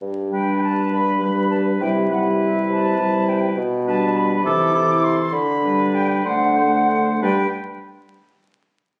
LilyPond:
<<
  \new Staff \with { instrumentName = "Flute" } { \time 6/8 \key g \major \tempo 4. = 67 r8 g''8 a''8 b''4 a''8 | g''8 fis''8 e''8 a''4 g''8 | r8 a''8 b''8 d'''4 c'''8 | b''4 g''8 fis''4. |
g''8 r2 r8 | }
  \new Staff \with { instrumentName = "Oboe" } { \time 6/8 \key g \major r8 b'4. b'4 | b'8 b'4. b'4 | r8 b'4 a'8 a'4 | r8 b'4 c''8 c''4 |
b'8 r2 r8 | }
  \new Staff \with { instrumentName = "Clarinet" } { \time 6/8 \key g \major r8 d'4. d'4 | e'8 e'4. e'4 | r8 d'4 e'8 e'4 | r8 d'4 d'8 d'4 |
d'8 r2 r8 | }
  \new Staff \with { instrumentName = "French horn" } { \clef bass \time 6/8 \key g \major r8 g4. g4 | g8 g4. g4 | r8 g4 e8 e4 | r8 g4 a8 a4 |
g8 r2 r8 | }
  \new Staff \with { instrumentName = "Bassoon" } { \clef bass \time 6/8 \key g \major g,4. g,4. | c4. c4. | b,4. c4. | d4. d4. |
g,8 r2 r8 | }
>>